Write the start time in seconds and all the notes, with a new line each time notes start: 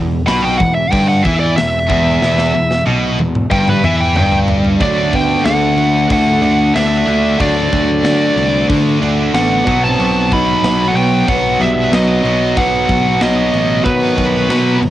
Already playing: E1 E2
0.26 B1 B2 B5, snare, open hi-hat
0.42 G5
0.58 E1 E2 F#5, kick
0.75 E5
0.91 G1 G2 G5, kick, open hi-hat
1.08 F#5
1.23 E2 E3 E5, kick
1.40 D5
1.56 E1 E2 E5, snare, open hi-hat
1.89 E1 E2, kick
2.22 E1 E2, snare
2.38 snare
2.55 E1 E2
2.71 snare
2.86 B1 B2, high tom
3.19 E1 E2, high tom
3.35 mid tom
3.51 G1 G2 G5, kick
3.68 B4, mid tom
3.84 E2 E3 E5, mid tom
4.01 G5
4.15 G1 G2 G5, mid tom
4.32 floor tom
4.48 floor tom
4.65 floor tom
4.80 D2 D3 F#3 A3 D4 D5, kick, crash
5.13 B3 G5, kick, crash
5.45 D2 A3 F#5, snare, crash
5.77 D2, crash
6.09 D2 D3 A3 D4 F#5, kick, crash
6.42 D2 D3 A3 D4, crash
6.75 D2 D3 A3 D4 E5, snare, crash
7.05 D2 D3 A3 D4, crash
7.38 D2 D3 F#3 A3 D4 D5, kick, crash
7.73 D2, kick, crash
8.03 D2, snare, crash
8.36 C2, crash
8.69 D3 A3 D4, kick, crash
9.02 D2 D3 A3 D4, crash
9.34 A1 D3 A3 B3 D4 F#5, snare, crash
9.65 B1 B2 F#3 B3, kick, crash
9.85 C4 A5
9.99 B1, crash
10.32 D#4 B5, kick, crash
10.63 B1, snare, crash
10.88 A3 F#5
10.94 B1 B2 F#3 B3 G5, crash
11.27 B1 B2 F#3 B3 F#5, kick, crash
11.60 B1 B2 F#3 G3 B3 E5, crash
11.90 B1 B2 F#3 B3, snare, crash
11.95 F#3 D#5
12.23 B1 B2 F#3 B3, crash
12.56 B1 B3 F#5, kick, crash
12.89 B1, kick, crash
13.21 B1 F#3 D#5, snare, crash
13.52 A1 B2 F#3 B3, crash
13.84 B2 D#3 F#3 B3 B4, kick, crash
14.16 B1 B2 F#3 B3, kick, crash
14.48 B2 F#3 B3, snare, crash
14.81 G1, crash